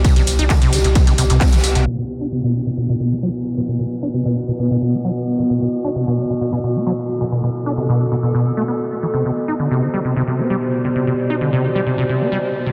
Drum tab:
RD |x-------x-------x-------x-------|--------------------------------|--------------------------------|--------------------------------|
HH |x-x-o-x-x-x-o-x-x-x-o-x-x-x-o-x-|--------------------------------|--------------------------------|--------------------------------|
TB |x-x-x-x-x-x-x-x-x-x-x-x-xxxxx-x-|--------------------------------|--------------------------------|--------------------------------|
CP |--------x---------------x-------|--------------------------------|--------------------------------|--------------------------------|
SD |--------o-----------o---ooooo-o-|--------------------------------|--------------------------------|--------------------------------|
BD |o-------o-------o-------o-------|--------------------------------|--------------------------------|--------------------------------|

RD |--------------------------------|--------------------------------|--------------------------------|
HH |--------------------------------|--------------------------------|--------------------------------|
TB |--------------------------------|--------------------------------|--------------------------------|
CP |--------------------------------|--------------------------------|--------------------------------|
SD |--------------------------------|--------------------------------|--------------------------------|
BD |--------------------------------|--------------------------------|--------------------------------|